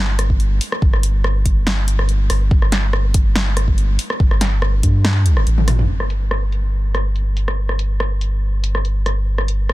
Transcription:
0.00 0.59 G1 loud
0.19 cross-stick medium
0.19 closed hi-hat medium
0.30 kick medium
0.40 closed hi-hat soft
0.61 open hi-hat medium
0.72 cross-stick medium
0.82 1.44 G1 medium
0.82 kick loud
0.93 cross-stick medium
1.03 closed hi-hat medium
1.24 cross-stick medium
1.46 2.28 G1 medium
1.46 kick medium
1.46 closed hi-hat medium
1.67 snare loud
1.88 closed hi-hat medium
1.99 cross-stick medium
2.09 closed hi-hat soft
2.30 2.50 G1 loud
2.30 cross-stick medium
2.30 open hi-hat medium
2.51 3.13 G1 medium
2.51 kick loud
2.62 cross-stick soft
2.72 snare medium
2.72 closed hi-hat medium
2.93 cross-stick medium
3.14 3.97 G1 loud
3.14 kick loud
3.14 closed hi-hat medium
3.36 snare loud
3.57 cross-stick medium
3.57 closed hi-hat medium
3.68 kick medium
3.78 closed hi-hat soft
3.99 open hi-hat loud
4.10 cross-stick medium
4.20 4.82 G1 medium
4.20 kick loud
4.31 cross-stick soft
4.41 snare medium
4.41 closed hi-hat medium
4.62 cross-stick medium
4.83 5.45 G2 medium
4.83 kick medium
4.83 closed hi-hat medium
5.05 snare loud
5.26 closed hi-hat medium
5.37 cross-stick medium
5.47 5.87 A1 loud
5.47 closed hi-hat soft
5.58 high tom medium
5.68 cross-stick soft
5.68 open hi-hat medium
5.68 mid tom medium
5.79 mid tom medium
5.89 9.73 G1 medium
6.00 cross-stick soft
6.10 closed hi-hat medium
6.31 cross-stick medium
6.52 closed hi-hat medium
6.95 cross-stick medium
6.95 closed hi-hat medium
7.16 closed hi-hat soft
7.37 closed hi-hat medium
7.48 cross-stick medium
7.69 cross-stick soft
7.79 closed hi-hat medium
8.00 cross-stick medium
8.21 closed hi-hat medium
8.64 closed hi-hat medium
8.75 cross-stick soft
8.85 closed hi-hat soft
9.06 cross-stick soft
9.06 closed hi-hat medium
9.38 cross-stick soft
9.48 closed hi-hat medium
9.69 cross-stick medium

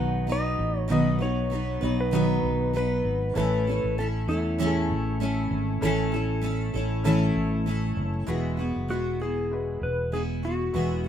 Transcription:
0.00 0.55 B1 medium
0.00 0.27 B2 medium
0.00 0.27 D#3 medium
0.00 0.26 F#3 medium
0.00 0.27 B3 medium
0.00 0.28 D#4 medium
0.00 0.89 D#4 medium
0.00 0.90 F#4 medium
0.00 0.28 B4 loud
0.00 0.91 B4 medium
0.00 0.32 F#5 loud
0.27 0.88 F#3 medium
0.27 0.88 B3 medium
0.27 0.88 D#4 medium
0.27 0.89 B4 medium
0.32 0.79 D#5 loud
0.59 0.87 A1 loud
0.79 0.91 C#5 loud
0.88 1.78 B1 loud
0.88 1.20 B2 medium
0.88 1.20 D#3 medium
0.88 1.20 F#3 medium
0.88 1.20 B3 medium
0.88 1.95 D#4 medium
0.88 1.19 D#4 medium
0.88 1.95 F#4 medium
0.88 1.17 B4 loud
0.88 1.96 B4 medium
0.92 1.22 D#5 loud
1.19 1.49 F#3 soft
1.19 1.50 B3 soft
1.19 1.51 D#4 soft
1.19 1.50 B4 soft
1.19 2.00 C#5 loud
1.50 1.81 F#3 medium
1.50 1.82 B3 medium
1.50 1.81 D#4 medium
1.50 1.80 B4 medium
1.81 2.40 B1 medium
1.81 2.11 F#3 soft
1.81 2.12 B3 medium
1.81 2.12 D#4 soft
1.81 2.12 B4 medium
2.00 2.76 B4 medium
2.11 2.74 B2 medium
2.11 2.74 D#3 medium
2.11 2.72 F#3 medium
2.11 2.73 B3 medium
2.11 3.18 D#4 medium
2.11 2.74 D#4 medium
2.11 3.18 F#4 medium
2.11 2.75 B4 loud
2.11 3.19 B4 medium
2.43 3.01 B1 medium
2.73 3.35 F#3 medium
2.73 3.36 B3 medium
2.73 3.36 D#4 medium
2.73 3.37 B4 medium
2.73 3.33 B4 loud
3.05 3.33 G#1 loud
3.34 3.80 A1 loud
3.34 3.66 A2 medium
3.34 3.67 E3 medium
3.34 3.67 A3 medium
3.34 4.40 C#4 medium
3.34 3.67 C#4 medium
3.34 4.41 E4 medium
3.34 3.67 E4 medium
3.34 4.41 A4 medium
3.34 3.66 A4 medium
3.34 3.94 B4 loud
3.67 3.97 A3 soft
3.67 3.98 C#4 soft
3.67 3.98 E4 soft
3.67 3.98 A4 medium
3.84 4.25 A1 medium
3.98 4.29 A3 medium
3.98 4.29 C#4 medium
3.98 4.28 E4 medium
3.98 4.07 A4 medium
3.98 4.27 A4 medium
4.28 4.91 E2 medium
4.28 4.58 A3 soft
4.28 4.59 C#4 soft
4.28 7.63 E4 medium
4.28 4.59 E4 medium
4.28 4.59 A4 medium
4.58 5.20 A2 medium
4.58 5.82 E3 medium
4.58 5.19 A3 loud
4.58 5.64 C#4 medium
4.58 5.20 C#4 medium
4.58 5.64 E4 medium
4.58 5.22 E4 loud
4.58 4.67 G#4 medium
4.58 5.21 A4 medium
4.67 5.68 A4 medium
4.90 5.47 A1 medium
5.20 5.82 A3 medium
5.20 5.82 C#4 medium
5.20 5.84 E4 medium
5.20 5.83 A4 medium
5.51 5.79 G#1 loud
5.81 6.70 A1 loud
5.81 6.13 A2 medium
5.81 6.13 E3 medium
5.81 6.13 A3 medium
5.81 6.87 C#4 medium
5.81 6.13 C#4 loud
5.81 6.87 E4 medium
5.81 6.12 E4 medium
5.81 6.87 A4 loud
5.81 6.11 A4 medium
6.12 6.40 A3 soft
6.12 6.41 C#4 soft
6.12 6.43 E4 medium
6.12 6.43 A4 medium
6.41 6.73 A3 medium
6.41 6.74 C#4 medium
6.41 6.74 E4 medium
6.41 6.72 A4 medium
6.74 7.32 A1 medium
6.74 7.04 A3 medium
6.74 7.04 C#4 soft
6.74 7.05 E4 medium
6.74 7.05 A4 medium
7.03 7.66 A2 medium
7.03 8.26 E3 medium
7.03 7.65 A3 medium
7.03 8.10 C#4 medium
7.03 7.66 C#4 medium
7.03 8.10 E4 medium
7.03 7.68 E4 loud
7.03 8.10 A4 loud
7.03 7.67 A4 loud
7.36 7.93 A1 loud
7.66 8.27 A3 medium
7.66 8.27 C#4 medium
7.66 8.28 E4 medium
7.66 8.28 A4 medium
7.97 8.25 F#1 loud
8.26 8.72 E1 medium
8.26 8.58 E3 medium
8.26 9.33 G#3 medium
8.26 8.58 G#3 medium
8.26 8.59 B3 medium
8.26 9.33 E4 medium
8.26 8.58 E4 medium
8.26 9.33 F#4 medium
8.26 8.56 F#4 medium
8.26 9.34 B4 medium
8.57 8.88 B3 soft
8.57 8.90 E4 soft
8.57 8.89 F#4 soft
8.76 8.90 F#1 medium
8.88 9.78 E1 medium
8.88 9.20 G#3 medium
8.88 9.20 B3 medium
8.88 9.20 E4 medium
8.88 9.22 F#4 medium
8.88 9.19 F#4 medium
9.20 10.13 B3 soft
9.20 10.13 E4 soft
9.20 10.14 F#4 soft
9.20 9.79 G#4 medium
9.51 10.57 G#3 medium
9.51 10.57 E4 medium
9.51 10.57 F#4 medium
9.51 10.58 B4 medium
9.81 10.70 E1 medium
9.81 10.14 B4 medium
10.12 10.43 G#3 medium
10.12 10.44 B3 medium
10.12 10.43 E4 medium
10.12 10.42 F#4 medium
10.12 10.22 G#4 loud
10.43 10.73 B3 soft
10.43 10.74 E4 soft
10.43 10.74 F#4 soft
10.43 11.07 F#4 medium
10.72 11.08 E1 medium
10.72 11.05 E3 medium
10.72 11.08 G#3 medium
10.72 11.05 G#3 medium
10.72 11.05 B3 medium
10.72 11.08 E4 medium
10.72 11.05 E4 medium
10.72 11.08 F#4 medium
10.72 11.03 F#4 medium
10.72 11.08 B4 medium
11.04 11.08 F#4 soft

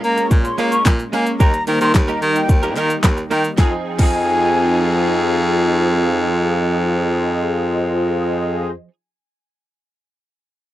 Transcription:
0.00 1.38 G#3 medium
0.00 3.54 A#3 medium
0.00 1.36 C#4 medium
0.00 0.27 A#5 medium
0.00 muted clean electric guitar stroke soft
0.00 open hi-hat medium
0.00 shaker medium
0.04 0.22 A#3 loud
0.17 0.70 C#4 medium
0.17 0.70 F4 medium
0.17 0.70 G#4 medium
0.17 0.71 A#4 medium
0.17 0.71 C#5 medium
0.17 muted clean electric guitar stroke medium
0.17 closed hi-hat medium
0.17 shaker medium
0.31 0.49 A#2 loud
0.31 muted clean electric guitar stroke medium
0.31 kick loud
0.31 shaker medium
0.44 0.56 C6 medium
0.44 muted clean electric guitar stroke medium
0.44 closed hi-hat medium
0.44 shaker medium
0.58 0.71 G#3 medium
0.58 0.76 A#3 loud
0.58 0.72 C#4 medium
0.58 0.71 F4 medium
0.58 0.71 A#4 medium
0.58 open hi-hat medium
0.58 shaker medium
0.72 0.83 G#3 soft
0.72 0.83 C#4 medium
0.72 0.82 F4 medium
0.72 0.82 A#4 medium
0.72 0.83 C#6 medium
0.72 closed hi-hat medium
0.72 shaker medium
0.86 1.03 A#2 loud
0.86 kick loud
0.86 snare loud
0.86 clap medium
0.86 clap loud
0.86 shaker medium
0.99 muted clean electric guitar stroke soft
0.99 closed hi-hat medium
0.99 shaker medium
1.13 1.26 G#3 medium
1.13 1.31 A#3 loud
1.13 1.26 C#4 medium
1.13 1.26 F4 medium
1.13 1.25 A#4 loud
1.13 1.24 G#5 medium
1.13 open hi-hat medium
1.13 shaker medium
1.27 muted clean electric guitar stroke soft
1.27 closed hi-hat medium
1.27 shaker medium
1.40 1.58 D#2 loud
1.40 3.56 G3 medium
1.40 1.53 A#3 medium
1.40 1.53 D#4 medium
1.40 3.56 D#4 loud
1.40 1.53 D#4 medium
1.40 1.53 G4 medium
1.40 1.53 A#4 medium
1.40 1.53 A#4 loud
1.40 1.53 D#5 medium
1.40 1.63 A#5 loud
1.40 kick loud
1.40 shaker medium
1.54 muted clean electric guitar stroke soft
1.54 closed hi-hat medium
1.54 shaker medium
1.67 1.76 D#3 loud
1.67 1.94 A#3 medium
1.67 1.78 A#3 medium
1.67 1.94 D#4 medium
1.67 1.78 D#4 medium
1.67 1.94 G4 medium
1.67 1.78 G4 medium
1.67 1.94 A#4 medium
1.67 1.78 A#4 medium
1.67 1.94 C5 medium
1.67 open hi-hat medium
1.67 shaker medium
1.81 1.90 D#3 loud
1.81 1.92 A#3 medium
1.81 1.92 D#4 medium
1.81 1.91 G4 medium
1.81 1.91 A#4 medium
1.81 1.93 C6 medium
1.81 closed hi-hat medium
1.81 shaker medium
1.95 2.12 D#2 loud
1.95 kick loud
1.95 snare medium
1.95 clap medium
1.95 clap loud
1.95 shaker medium
2.08 2.20 A#3 medium
2.08 2.21 D#4 medium
2.08 2.21 G4 medium
2.08 2.21 A#4 medium
2.08 2.20 A#5 medium
2.08 closed hi-hat soft
2.08 shaker soft
2.22 2.40 D#3 loud
2.22 2.75 A#3 medium
2.22 2.75 D#4 medium
2.22 2.75 G4 medium
2.22 2.75 A#4 medium
2.22 2.75 D#5 medium
2.22 muted clean electric guitar stroke soft
2.22 open hi-hat medium
2.22 shaker medium
2.35 2.74 G5 medium
2.35 muted clean electric guitar stroke soft
2.35 closed hi-hat medium
2.35 shaker medium
2.49 2.78 D#2 loud
2.49 muted clean electric guitar stroke soft
2.49 kick loud
2.49 shaker medium
2.63 2.74 A#3 medium
2.63 2.74 D#4 medium
2.63 2.73 G4 medium
2.63 2.73 A#4 medium
2.63 closed hi-hat medium
2.63 shaker medium
2.76 2.94 D#3 loud
2.76 2.90 A#3 medium
2.76 2.90 D#4 loud
2.76 2.89 G4 loud
2.76 2.89 A#4 loud
2.76 clap medium
2.76 open hi-hat medium
2.76 shaker medium
2.90 muted clean electric guitar stroke medium
2.90 closed hi-hat medium
2.90 shaker medium
3.03 3.21 D#2 loud
3.03 muted clean electric guitar stroke soft
3.03 kick loud
3.03 snare loud
3.03 clap loud
3.03 clap medium
3.03 shaker medium
3.17 muted clean electric guitar stroke soft
3.17 closed hi-hat medium
3.17 shaker medium
3.31 3.49 D#3 loud
3.31 3.44 A#3 medium
3.31 3.44 D#4 medium
3.31 3.44 G4 medium
3.31 3.43 A#4 medium
3.31 3.42 G5 medium
3.31 open hi-hat medium
3.31 shaker medium
3.44 muted clean electric guitar stroke soft
3.44 closed hi-hat medium
3.44 shaker medium
3.57 3.73 F2 loud
3.57 3.97 F3 medium
3.57 8.44 F3 medium
3.57 8.44 C4 medium
3.57 3.99 C4 medium
3.57 8.44 D#4 medium
3.57 4.01 D#4 loud
3.57 8.44 F4 medium
3.57 3.74 F4 medium
3.57 8.44 G#4 medium
3.57 3.73 G#4 medium
3.57 3.73 C5 medium
3.57 3.73 D#5 loud
3.57 3.73 G#5 medium
3.57 kick loud
3.57 snare medium
3.57 clap medium
3.62 4.02 G#4 loud
3.98 8.71 F2 loud
3.98 8.88 F3 medium
3.98 8.90 C4 medium
3.98 8.91 D#4 loud
3.98 8.71 F4 medium
3.98 8.71 G#4 medium
3.98 8.71 C5 medium
3.98 8.71 D#5 loud
3.98 5.18 G#5 loud
3.98 kick loud
3.98 clap medium
3.98 crash medium
4.03 8.93 G#4 loud

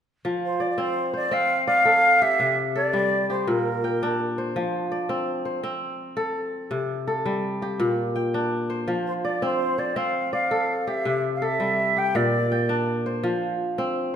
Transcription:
0.25 2.45 F3 medium
0.45 0.63 C5 medium
0.60 1.67 D5 medium
0.60 0.70 D5 medium
0.70 0.81 D5 medium
0.78 1.31 C4 medium
0.78 1.15 C5 medium
1.14 2.32 C5 medium
1.14 1.34 D5 medium
1.31 3.11 C4 medium
1.31 1.67 F5 medium
1.67 2.78 D5 medium
1.67 2.23 F5 medium
1.85 2.75 A4 medium
2.22 3.29 G4 medium
2.22 2.58 E5 loud
2.40 3.53 C3 medium
2.76 3.53 A4 medium
2.76 3.26 D5 medium
2.93 3.52 G3 medium
3.30 4.71 G4 medium
3.30 3.50 C5 medium
3.47 4.60 A#2 medium
3.47 4.20 A#4 medium
3.84 4.77 G5 medium
4.03 5.71 D4 medium
4.38 5.45 C5 medium
4.56 6.77 F3 medium
4.92 6.02 D5 medium
5.09 5.63 C4 medium
5.45 6.64 C5 medium
5.63 7.43 C4 medium
6.17 7.07 A4 medium
6.71 7.85 C3 medium
7.07 7.86 A4 medium
7.26 7.85 G3 medium
7.62 9.03 G4 medium
7.80 8.94 A#2 medium
8.16 9.09 G5 medium
8.34 10.02 D4 medium
8.70 9.78 C5 medium
8.88 11.11 F3 medium
9.07 9.13 C5 medium
9.25 10.32 D5 medium
9.25 9.45 D5 medium
9.42 9.96 C4 medium
9.42 9.81 C5 medium
9.78 10.97 C5 medium
9.78 9.98 D5 medium
9.96 11.76 C4 medium
9.96 10.33 F5 medium
10.33 11.44 D5 medium
10.33 10.90 F5 medium
10.51 11.41 A4 medium
10.87 11.96 G4 medium
10.87 11.25 E5 medium
11.05 12.20 C3 medium
11.35 11.46 F5 medium
11.42 12.21 A4 medium
11.42 12.00 E5 medium
11.60 12.20 G3 medium
11.97 13.38 G4 medium
11.97 12.17 G5 medium
12.15 13.29 A#2 medium
12.15 12.88 D5 medium
12.52 13.45 G5 medium
12.69 14.16 D4 medium
13.06 14.14 C5 medium
13.23 14.16 F3 medium
13.78 14.16 C4 medium

